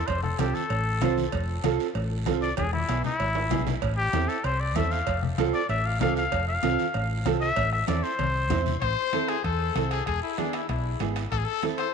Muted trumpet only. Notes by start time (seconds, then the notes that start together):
0.07 C5
0.23 A4
0.39 G4
0.55 A4
2.42 D5
2.57 G#4
2.73 E4
3.05 E4
3.97 G4
4.29 A4
4.44 C5
4.60 D5
4.76 E5
4.91 F5
5.54 D5
5.70 E5
5.86 F5
6.01 F5
6.17 F5
6.48 F5
7.41 E5
7.72 E5
7.88 D5
8.04 C5